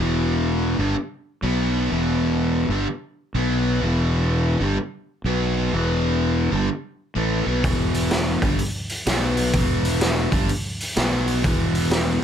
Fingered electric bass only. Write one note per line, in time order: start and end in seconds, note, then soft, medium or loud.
0.00 0.74 E1 medium
0.79 0.94 G1 medium
1.43 1.87 B1 medium
1.92 2.66 E1 medium
2.69 2.85 G1 medium
3.35 3.79 B1 loud
3.82 4.56 E1 medium
4.61 4.76 G1 medium
5.24 5.69 B1 medium
5.73 6.47 E1 medium
6.52 6.68 G1 medium
7.16 7.45 A1 medium
7.47 7.63 B1 medium
7.64 8.38 E1 medium
8.42 8.58 G1 medium
9.07 9.51 B1 loud
9.54 10.29 E1 medium
10.32 10.48 G1 medium
10.97 11.42 B1 medium
11.45 12.19 E1 medium